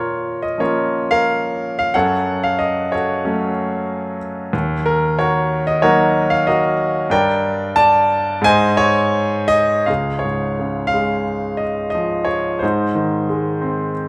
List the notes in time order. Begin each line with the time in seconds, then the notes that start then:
Already playing: A#2 F4 A#4 C#5
0.42 D#5
0.58 F3 A#3 C#4 F4 A#4 C#5
1.11 A#4 C#5 F5
1.79 F5
1.94 F#2 A4 C#5 F#5
2.44 F5
2.59 D#5
2.92 F#4 A4 C#5
3.25 F#3 A3 C#4
4.53 D#2
4.86 A#4
5.19 F#4 A#4 C#5
5.67 D#5
5.82 F#3 A#3 D#4 F#4 A#4 C#5
6.30 F5
6.47 F#4 A#4 D#5
7.10 G2 A#4 D5 G5
7.76 D5 A5
8.41 G#2 C5 D#5 G#5
8.77 C#5
9.48 D#5
9.86 C#2 G#4 F5
10.19 C#5
10.24 G#2
10.59 C#3
10.87 F5
10.94 G#3
11.57 D#5
11.90 D#5
11.95 F3
12.25 C#5
12.59 G#2 C5
12.63 D#4
12.95 D#3
13.29 G#3
13.61 C4